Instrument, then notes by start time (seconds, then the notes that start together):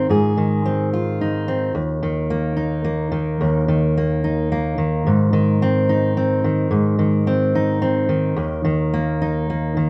steel-string acoustic guitar
Already playing: D#3 D#4
0.10 G#2 G#4
0.37 D#3
0.66 C4
0.93 F4
1.21 D#4
1.48 C4
1.75 D#2
2.03 D#3
2.30 A#3
2.57 D#4
2.84 A#3
3.12 D#3
3.41 D#2
3.68 D#3
3.97 A#3
4.24 D#4
4.52 A#3
4.78 D#3
5.07 G#2
5.33 D#3
5.62 C4
5.89 D#4
6.17 C4
6.44 D#3
6.71 G#2
6.99 D#3
7.27 C4
7.55 D#4
7.82 C4
8.09 D#3
8.36 D#2
8.65 D#3
8.94 A#3
9.22 D#4
9.50 A#3
9.77 D#3